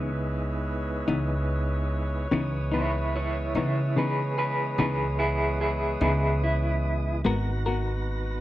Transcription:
0.00 1.04 C#2 medium
0.00 2.28 G#3 medium
0.00 2.28 B3 medium
0.00 2.28 D#4 medium
0.00 2.28 E4 medium
0.00 7.07 B4 medium
0.00 7.07 C#5 medium
1.08 2.27 C#2 loud
1.08 1.33 E3 soft
1.08 1.33 B3 soft
1.08 1.33 D#4 medium
2.31 3.56 C#2 medium
2.31 2.56 C#3 medium
2.31 2.56 E3 medium
2.31 7.22 E3 medium
2.31 7.22 G#3 medium
2.31 2.57 B3 medium
2.31 7.22 B3 medium
2.31 2.57 D#4 medium
2.31 7.22 D#5 medium
2.72 2.98 E3 soft
2.72 2.98 B3 soft
2.72 2.97 D#4 soft
2.72 3.14 E4 medium
2.72 3.13 C#5 medium
3.16 3.53 E4 medium
3.16 3.55 C#5 medium
3.55 4.74 C#3 medium
3.55 3.81 E3 soft
3.55 3.81 B3 soft
3.55 3.80 D#4 soft
3.55 3.94 E4 medium
3.55 3.96 C#5 medium
3.96 4.21 C#3 medium
3.96 4.21 E3 medium
3.96 4.22 B3 medium
3.96 4.22 D#4 medium
3.96 4.35 G#4 medium
3.96 4.37 B4 medium
4.38 4.76 G#4 medium
4.38 4.77 B4 medium
4.78 5.98 C#2 medium
4.78 5.03 C#3 medium
4.78 5.03 E3 medium
4.78 5.04 B3 medium
4.78 5.04 D#4 medium
4.78 5.17 G#4 medium
4.78 5.18 B4 medium
5.19 5.57 E4 medium
5.19 5.59 G#4 medium
5.61 5.99 E4 medium
5.61 6.01 G#4 medium
6.01 7.21 C#2 loud
6.01 6.27 E3 soft
6.01 6.27 B3 soft
6.01 6.26 D#4 medium
6.01 6.40 E4 medium
6.01 6.42 G#4 medium
6.44 7.23 E4 medium
7.24 8.41 G#1 medium
7.24 8.41 D#3 medium
7.24 7.50 G#3 medium
7.24 8.41 B3 medium
7.24 7.50 B3 medium
7.24 8.41 F#4 medium
7.24 7.50 F#4 medium
7.24 7.50 A#4 medium
7.24 8.41 B4 medium
7.24 8.41 A#5 medium
7.66 7.92 B3 soft
7.66 7.91 F#4 medium
7.66 7.91 A#4 medium

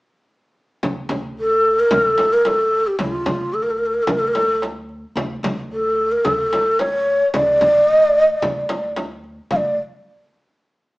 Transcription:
0.83 1.07 D2 medium
0.83 frame drum medium
0.83 darbuka dum medium
1.09 1.81 D2 medium
1.09 frame drum medium
1.09 darbuka dum medium
1.37 1.81 A4 medium
1.37 darbuka ka soft
1.52 darbuka ka soft
1.80 1.94 A#4 medium
1.91 2.86 D2 medium
1.91 2.34 A4 medium
1.91 frame drum medium
1.91 darbuka dum medium
2.18 darbuka tek medium
2.18 frame drum medium
2.33 2.48 A#4 medium
2.45 2.89 A4 medium
2.45 darbuka tek medium
2.45 frame drum medium
2.73 darbuka ka soft
2.87 3.00 G4 medium
2.99 3.23 C#2 medium
2.99 3.12 E4 medium
2.99 frame drum medium
2.99 darbuka dum medium
3.12 3.55 F4 medium
3.26 3.98 D2 medium
3.26 frame drum medium
3.26 darbuka dum medium
3.54 3.64 A4 medium
3.54 darbuka ka soft
3.63 3.72 A#4 medium
3.68 3.80 A4 medium
3.68 darbuka ka soft
3.78 3.87 A#4 medium
3.86 3.95 A4 medium
3.94 4.04 A#4 medium
4.03 4.12 A4 medium
4.07 5.03 D2 medium
4.07 4.21 A#4 medium
4.07 frame drum medium
4.07 darbuka dum medium
4.19 4.29 A4 medium
4.28 4.35 A#4 medium
4.34 4.62 A4 medium
4.34 darbuka tek medium
4.34 frame drum medium
4.62 darbuka tek medium
4.62 frame drum medium
4.89 darbuka ka soft
5.16 5.40 D2 medium
5.16 frame drum medium
5.16 darbuka dum medium
5.43 6.15 D2 medium
5.43 darbuka dum medium
5.43 frame drum medium
5.72 6.13 A4 medium
5.72 darbuka ka soft
5.85 darbuka ka soft
6.12 6.26 A#4 medium
6.24 7.20 D2 medium
6.24 6.81 A4 medium
6.24 frame drum medium
6.24 darbuka dum medium
6.53 darbuka tek medium
6.53 frame drum medium
6.79 7.33 C#5 medium
6.79 darbuka tek medium
6.79 frame drum medium
7.08 darbuka ka soft
7.34 7.58 C#2 medium
7.34 7.91 D5 medium
7.34 frame drum medium
7.34 darbuka dum medium
7.48 darbuka ka soft
7.61 8.33 D2 medium
7.61 frame drum medium
7.61 darbuka dum medium
7.90 8.06 D#5 medium
7.90 darbuka ka soft
8.04 8.22 D5 medium
8.04 darbuka ka soft
8.16 darbuka ka soft
8.22 8.38 D#5 medium
8.38 8.93 D5 medium
8.42 9.38 D2 medium
8.42 frame drum medium
8.42 darbuka dum medium
8.69 darbuka tek medium
8.69 frame drum medium
8.96 darbuka tek medium
8.96 frame drum medium
9.24 darbuka ka soft
9.51 9.77 D2 medium
9.51 9.57 F5 medium
9.51 frame drum medium
9.51 darbuka dum medium
9.56 9.77 D5 medium

